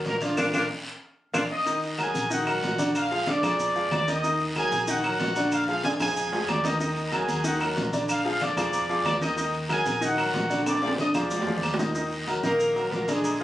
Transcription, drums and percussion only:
0.05 high conga, low timbale, short guiro, maracas
0.21 high conga, high timbale, short guiro, maracas
0.37 high conga, high timbale, long guiro, claves, maracas
0.53 high conga, high timbale, long guiro, claves, maracas
1.34 high conga, high timbale, long guiro, claves, maracas
1.66 high conga, low agogo, long guiro, maracas
1.83 high conga, low agogo, maracas
1.98 high conga, low timbale, low agogo, short guiro, claves, maracas
2.15 high conga, low agogo, short guiro, maracas
2.31 long guiro, maracas
2.47 high conga, low agogo, claves, maracas
2.63 high conga, low timbale, short guiro, maracas
2.79 high conga, low agogo, short guiro, maracas
2.95 low agogo, long guiro, claves, maracas
3.11 high conga, maracas
3.27 high conga, low timbale, low agogo, short guiro, maracas
3.43 low conga, low agogo, short guiro, claves, maracas
3.59 high conga, low conga, low agogo, long guiro, maracas
3.75 high conga, maracas
3.91 high conga, low timbale, low agogo, short guiro, claves, maracas
4.08 low agogo, short guiro, maracas
4.24 high conga, low agogo, long guiro, maracas
4.40 high conga, low agogo, maracas
4.56 high conga, low timbale, low agogo, short guiro, claves, maracas
4.72 high conga, low agogo, short guiro, maracas
4.88 high conga, long guiro, maracas
5.04 high conga, low agogo, claves, maracas
5.20 high conga, low timbale, short guiro, maracas
5.36 low agogo, short guiro, maracas
5.52 high conga, low agogo, long guiro, claves, maracas
5.68 high conga, maracas
5.84 high conga, high timbale, low agogo, short guiro, maracas
6.00 low conga, high timbale, low agogo, short guiro, claves, maracas
6.16 high conga, low conga, low agogo, long guiro, maracas
6.32 high conga, low timbale, maracas
6.48 high conga, low timbale, low agogo, short guiro, claves, maracas
6.64 high conga, low timbale, low agogo, short guiro, maracas
6.80 low agogo, long guiro, maracas
6.96 high conga, low agogo, maracas
7.12 high conga, low timbale, low agogo, short guiro, claves, maracas
7.28 high conga, low agogo, short guiro, maracas
7.44 high conga, long guiro, maracas
7.61 high conga, low agogo, claves, maracas
7.77 high conga, low timbale, short guiro, maracas
7.93 high conga, low agogo, short guiro, maracas
8.09 low agogo, long guiro, claves, maracas
8.25 high conga, maracas
8.41 high conga, low timbale, low agogo, short guiro, maracas
8.57 low conga, low agogo, short guiro, claves, maracas
8.73 high conga, low conga, low agogo, long guiro, maracas
8.89 high conga, maracas
9.05 high conga, low timbale, low agogo, short guiro, claves, maracas
9.21 high conga, low agogo, short guiro, maracas
9.38 high conga, low agogo, long guiro, maracas
9.54 high conga, low agogo, maracas
9.70 high conga, low timbale, low agogo, short guiro, claves, maracas
9.86 high conga, low agogo, short guiro, maracas
10.02 high conga, long guiro, maracas
10.18 high conga, low agogo, claves, maracas
10.34 high conga, low timbale, short guiro, maracas
10.50 low agogo, short guiro, maracas
10.66 high conga, high timbale, low agogo, long guiro, claves, maracas
10.77 high timbale
10.82 high conga, maracas
10.88 high timbale
10.98 high conga, low agogo, short guiro, maracas
11.14 low conga, low agogo, short guiro, claves, maracas
11.31 high conga, low timbale, low agogo, long guiro, maracas
11.42 low timbale
11.47 high conga, maracas
11.52 low timbale
11.58 high conga
11.63 low agogo, short guiro, claves, maracas
11.74 low timbale
11.79 low conga, low agogo, short guiro, maracas
11.85 low timbale
11.95 low agogo, long guiro, maracas
12.11 high conga, low agogo, maracas
12.27 high conga, low timbale, low agogo, short guiro, maracas
12.44 high conga, low agogo, short guiro, maracas
12.60 long guiro, maracas
12.76 high conga, low agogo, maracas
12.92 high conga, low timbale, short guiro, maracas
13.08 high conga, low agogo, short guiro, maracas
13.24 high conga, low agogo, long guiro, maracas
13.40 high conga, maracas

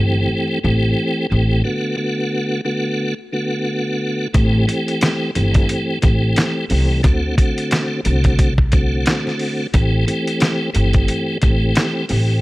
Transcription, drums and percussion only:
4.34 kick, closed hi-hat
4.69 closed hi-hat
4.88 closed hi-hat
5.01 snare, closed hi-hat
5.35 closed hi-hat
5.54 kick, closed hi-hat
5.69 closed hi-hat
6.02 kick, closed hi-hat
6.36 snare, closed hi-hat
6.70 open hi-hat
7.04 kick, closed hi-hat
7.38 kick, closed hi-hat
7.58 closed hi-hat
7.71 snare, closed hi-hat
8.05 closed hi-hat
8.24 kick, closed hi-hat
8.39 kick, closed hi-hat
8.58 kick
8.72 kick, closed hi-hat
9.06 snare, closed hi-hat
9.27 snare
9.39 open hi-hat
9.74 kick, closed hi-hat
10.08 closed hi-hat
10.27 closed hi-hat
10.40 snare, closed hi-hat
10.75 closed hi-hat
10.93 kick, closed hi-hat
11.08 closed hi-hat
11.41 kick, closed hi-hat
11.75 snare, closed hi-hat
12.09 open hi-hat

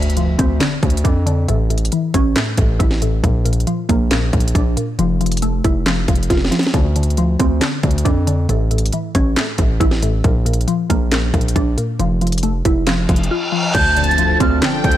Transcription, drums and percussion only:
0.02 closed hi-hat
0.10 closed hi-hat
0.17 closed hi-hat
0.39 kick, closed hi-hat
0.60 snare, clap, closed hi-hat
0.83 kick, closed hi-hat
0.90 closed hi-hat
0.97 closed hi-hat
1.05 kick, closed hi-hat
1.27 closed hi-hat
1.49 closed hi-hat
1.70 closed hi-hat
1.78 closed hi-hat
1.85 closed hi-hat
1.92 closed hi-hat
2.14 kick, closed hi-hat
2.36 snare, clap, closed hi-hat
2.57 kick, closed hi-hat
2.80 kick, closed hi-hat
2.91 snare
3.02 closed hi-hat
3.24 kick, closed hi-hat
3.46 closed hi-hat
3.53 closed hi-hat
3.60 closed hi-hat
3.67 closed hi-hat
3.89 kick, closed hi-hat
4.11 snare, clap, closed hi-hat
4.33 kick, closed hi-hat
4.40 closed hi-hat
4.48 closed hi-hat
4.55 kick, closed hi-hat
4.77 closed hi-hat
4.99 closed hi-hat
5.21 closed hi-hat
5.26 closed hi-hat
5.32 closed hi-hat
5.37 closed hi-hat
5.42 closed hi-hat
5.64 kick, closed hi-hat
5.86 snare, clap, closed hi-hat
6.08 kick, closed hi-hat
6.15 closed hi-hat
6.23 closed hi-hat
6.30 kick, snare, closed hi-hat
6.37 snare
6.45 snare
6.52 snare, closed hi-hat
6.59 snare, closed hi-hat
6.67 snare
6.74 kick, closed hi-hat
6.96 closed hi-hat
7.03 closed hi-hat
7.10 closed hi-hat
7.17 closed hi-hat
7.40 kick, closed hi-hat
7.61 snare, clap, closed hi-hat
7.83 kick, closed hi-hat
7.91 closed hi-hat
7.98 closed hi-hat
8.05 kick, closed hi-hat
8.27 closed hi-hat
8.49 closed hi-hat
8.71 closed hi-hat
8.78 closed hi-hat
8.86 closed hi-hat
8.93 closed hi-hat
9.15 kick, closed hi-hat
9.36 snare, clap, closed hi-hat
9.58 kick, closed hi-hat
9.81 kick, closed hi-hat
9.91 snare
10.03 closed hi-hat
10.24 kick, closed hi-hat
10.46 closed hi-hat
10.53 closed hi-hat
10.61 closed hi-hat
10.68 closed hi-hat
10.90 kick, closed hi-hat
11.11 snare, clap, closed hi-hat
11.34 kick, closed hi-hat
11.41 closed hi-hat
11.48 closed hi-hat
11.56 kick, closed hi-hat
11.78 closed hi-hat
12.00 closed hi-hat
12.21 closed hi-hat
12.27 closed hi-hat
12.32 closed hi-hat
12.38 closed hi-hat
12.43 closed hi-hat
12.65 kick, closed hi-hat
12.87 snare, clap, closed hi-hat
13.09 kick, closed hi-hat
13.16 closed hi-hat
13.23 closed hi-hat
13.75 kick, closed hi-hat, crash
13.96 closed hi-hat
14.04 closed hi-hat
14.11 closed hi-hat
14.18 closed hi-hat
14.40 kick, closed hi-hat
14.62 snare, clap, closed hi-hat
14.84 kick, closed hi-hat
14.91 closed hi-hat

